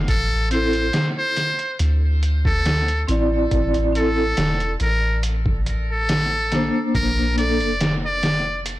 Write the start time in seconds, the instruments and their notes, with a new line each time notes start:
0.08 808-style bass A1, muted trumpet A4, kick, closed hi-hat
0.50 vibraphone C4 E4, muted trumpet C5, closed hi-hat
0.54 vibraphone A4
0.73 closed hi-hat
0.93 snare, closed hi-hat
1.18 muted trumpet C5
1.36 snare, closed hi-hat
1.59 closed hi-hat
1.79 808-style bass D2, closed hi-hat
2.23 closed hi-hat
2.45 muted trumpet A4, kick
2.66 snare, closed hi-hat
2.88 closed hi-hat
3.07 808-style bass A1, vibraphone C4 E4 D5, closed hi-hat
3.51 808-style bass A1, kick, closed hi-hat
3.74 closed hi-hat
3.93 vibraphone C4 E4, closed hi-hat
3.97 vibraphone A4, muted trumpet A4
4.37 808-style bass E1, snare, closed hi-hat
4.60 closed hi-hat
4.80 808-style bass A1, muted trumpet A#4, closed hi-hat
5.23 closed hi-hat
5.46 kick
5.66 closed hi-hat
5.92 muted trumpet A4
6.09 snare, closed hi-hat
6.51 vibraphone A#3 D4, snare, closed hi-hat
6.55 vibraphone C5
6.95 808-style bass A#1, muted trumpet A#4, kick, closed hi-hat
7.36 vibraphone A#3 D4 A4, muted trumpet D5, closed hi-hat
7.60 808-style bass F1, closed hi-hat
7.81 snare, closed hi-hat
8.05 muted trumpet D5
8.23 snare, closed hi-hat
8.66 closed hi-hat